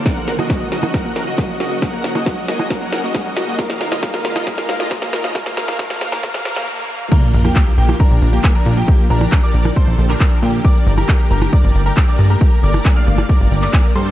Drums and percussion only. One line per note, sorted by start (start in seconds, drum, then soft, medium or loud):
0.06 kick loud
0.06 snare medium
0.06 closed hi-hat medium
0.06 shaker soft
0.17 closed hi-hat medium
0.28 snare medium
0.28 open hi-hat loud
0.28 shaker medium
0.39 closed hi-hat soft
0.39 percussion blips medium
0.39 shaker soft
0.50 kick loud
0.50 snare medium
0.50 closed hi-hat medium
0.50 shaker soft
0.61 closed hi-hat medium
0.72 snare medium
0.72 open hi-hat medium
0.72 shaker medium
0.83 closed hi-hat medium
0.83 percussion blips medium
0.83 shaker soft
0.94 kick loud
0.94 snare medium
0.94 closed hi-hat medium
0.94 shaker soft
1.05 closed hi-hat medium
1.16 snare medium
1.16 open hi-hat loud
1.16 shaker medium
1.27 closed hi-hat soft
1.27 shaker soft
1.38 kick loud
1.38 snare medium
1.38 closed hi-hat medium
1.38 shaker soft
1.49 closed hi-hat soft
1.60 snare medium
1.60 open hi-hat medium
1.60 shaker medium
1.71 closed hi-hat soft
1.71 shaker soft
1.82 kick loud
1.82 snare medium
1.82 closed hi-hat medium
1.82 shaker soft
1.93 closed hi-hat medium
2.04 snare medium
2.04 open hi-hat medium
2.04 shaker medium
2.15 closed hi-hat medium
2.15 percussion blips medium
2.15 shaker soft
2.26 kick loud
2.26 snare medium
2.26 closed hi-hat medium
2.26 shaker soft
2.37 closed hi-hat medium
2.48 snare medium
2.48 open hi-hat medium
2.48 shaker medium
2.59 percussion blips medium
2.59 shaker soft
2.70 kick loud
2.70 snare medium
2.70 closed hi-hat medium
2.70 shaker soft
2.82 closed hi-hat medium
2.92 snare medium
2.92 open hi-hat loud
2.92 shaker medium
3.04 closed hi-hat medium
3.04 shaker soft
3.15 kick loud
3.15 snare medium
3.15 closed hi-hat medium
3.15 shaker soft
3.26 closed hi-hat medium
3.37 snare medium
3.37 open hi-hat medium
3.37 shaker medium
3.48 closed hi-hat medium
3.48 shaker soft
3.59 kick loud
3.59 snare medium
3.59 closed hi-hat loud
3.59 shaker soft
3.70 snare medium
3.70 closed hi-hat medium
3.81 snare medium
3.81 open hi-hat loud
3.81 shaker medium
3.92 snare medium
3.92 closed hi-hat medium
3.92 percussion blips medium
3.92 shaker soft
4.03 kick loud
4.03 snare medium
4.03 closed hi-hat medium
4.03 shaker soft
4.14 snare medium
4.14 closed hi-hat medium
4.25 snare medium
4.25 open hi-hat medium
4.25 shaker medium
4.36 snare medium
4.36 percussion blips medium
4.36 shaker soft
4.47 kick loud
4.47 snare medium
4.47 closed hi-hat medium
4.47 shaker soft
4.58 snare medium
4.58 closed hi-hat medium
4.69 snare loud
4.69 open hi-hat loud
4.69 shaker medium
4.80 snare medium
4.80 closed hi-hat medium
4.80 shaker soft
4.91 kick loud
4.91 snare medium
4.91 closed hi-hat medium
4.91 shaker soft
5.02 snare medium
5.02 closed hi-hat medium
5.13 snare loud
5.13 open hi-hat medium
5.13 shaker medium
5.24 snare medium
5.24 closed hi-hat medium
5.24 shaker soft
5.35 kick loud
5.35 snare loud
5.35 closed hi-hat loud
5.35 shaker soft
5.46 snare medium
5.46 closed hi-hat medium
5.57 snare loud
5.57 open hi-hat loud
5.57 shaker medium
5.68 snare medium
5.68 percussion blips medium
5.68 shaker soft
5.79 kick loud
5.79 snare loud
5.79 closed hi-hat loud
5.79 shaker soft
5.90 snare medium
5.90 closed hi-hat medium
6.01 snare loud
6.01 open hi-hat medium
6.01 shaker medium
6.12 snare loud
6.12 closed hi-hat medium
6.12 percussion blips medium
6.12 shaker soft
6.23 kick loud
6.23 snare loud
6.23 closed hi-hat loud
6.23 shaker soft
6.34 snare loud
6.34 closed hi-hat medium
6.45 snare loud
6.45 open hi-hat loud
6.45 shaker medium
6.56 snare loud
6.56 shaker soft
7.12 kick loud
7.12 closed hi-hat medium
7.12 crash loud
7.12 shaker soft
7.23 closed hi-hat medium
7.34 open hi-hat loud
7.34 shaker medium
7.45 closed hi-hat medium
7.45 percussion blips medium
7.45 shaker soft
7.56 kick loud
7.56 clap loud
7.56 closed hi-hat loud
7.56 shaker soft
7.67 closed hi-hat medium
7.78 open hi-hat loud
7.78 shaker medium
7.89 closed hi-hat medium
7.89 percussion blips medium
7.89 shaker soft
8.00 kick loud
8.00 closed hi-hat loud
8.00 shaker soft
8.11 closed hi-hat medium
8.22 open hi-hat loud
8.22 shaker medium
8.33 closed hi-hat medium
8.33 shaker soft
8.44 kick loud
8.44 clap loud
8.44 closed hi-hat medium
8.44 shaker soft
8.55 closed hi-hat medium
8.66 open hi-hat loud
8.66 shaker medium
8.77 closed hi-hat medium
8.77 shaker soft
8.88 kick loud
8.88 closed hi-hat medium
8.88 shaker soft
8.99 closed hi-hat medium
9.10 open hi-hat loud
9.10 shaker medium
9.21 closed hi-hat medium
9.21 percussion blips medium
9.21 shaker soft
9.32 kick loud
9.32 clap loud
9.32 closed hi-hat medium
9.32 shaker soft
9.43 closed hi-hat medium
9.54 open hi-hat loud
9.54 shaker medium
9.65 closed hi-hat medium
9.65 percussion blips medium
9.65 shaker soft
9.76 kick loud
9.76 closed hi-hat medium
9.76 shaker soft
9.87 closed hi-hat medium
9.98 open hi-hat loud
9.98 shaker medium
10.09 clap soft
10.09 closed hi-hat medium
10.09 shaker soft
10.20 kick loud
10.20 clap loud
10.20 closed hi-hat medium
10.20 shaker soft
10.31 closed hi-hat medium
10.43 open hi-hat loud
10.43 shaker medium
10.54 closed hi-hat medium
10.54 shaker soft
10.65 kick loud
10.65 closed hi-hat medium
10.65 shaker soft
10.76 closed hi-hat medium
10.87 open hi-hat loud
10.87 shaker medium
10.98 closed hi-hat soft
10.98 percussion blips medium
10.98 shaker soft
11.09 kick loud
11.09 clap loud
11.09 closed hi-hat medium
11.09 shaker soft
11.20 closed hi-hat medium
11.31 open hi-hat loud
11.31 shaker medium
11.42 closed hi-hat medium
11.42 percussion blips medium
11.42 shaker soft
11.53 kick loud
11.53 closed hi-hat medium
11.53 shaker soft
11.64 closed hi-hat medium
11.75 open hi-hat loud
11.75 shaker medium
11.86 closed hi-hat medium
11.86 shaker soft
11.97 kick loud
11.97 clap loud
11.97 closed hi-hat medium
11.97 shaker soft
12.08 closed hi-hat medium
12.19 open hi-hat loud
12.19 shaker medium
12.30 closed hi-hat medium
12.30 shaker soft
12.41 kick loud
12.41 closed hi-hat medium
12.41 shaker soft
12.52 closed hi-hat medium
12.63 open hi-hat loud
12.63 shaker medium
12.74 percussion blips medium
12.74 shaker soft
12.85 kick loud
12.85 clap loud
12.85 closed hi-hat medium
12.85 shaker soft
12.96 closed hi-hat medium
13.07 open hi-hat loud
13.07 shaker medium
13.18 closed hi-hat medium
13.18 percussion blips medium
13.18 shaker soft
13.29 kick loud
13.29 closed hi-hat medium
13.29 shaker soft
13.40 closed hi-hat medium
13.51 open hi-hat loud
13.51 shaker medium
13.62 clap soft
13.62 closed hi-hat medium
13.62 shaker soft
13.73 kick loud
13.73 clap loud
13.73 closed hi-hat medium
13.73 shaker soft
13.84 closed hi-hat medium
13.95 open hi-hat loud
13.95 shaker medium
14.06 closed hi-hat soft
14.06 shaker soft